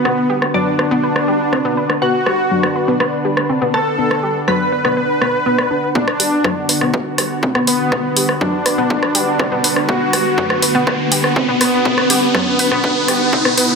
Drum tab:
HH |----------------|----------------|----------------|--o---o---o---o-|
SD |r--r--r--r--r--r|--r--r--r--r--r-|-r--r--r--r--r--|-r--r--r--r--r--|
BD |----------------|----------------|----------------|o---o---o---o---|

HH |--o---o---o---o-|--o---o---o---o-|--o---o---o---o-|
SD |r--r--r--r--r--r|--r--r--r--r--r-|-r--r--r--r--r--|
BD |o---o---o---o---|o---o---o---o---|o---o---o---o---|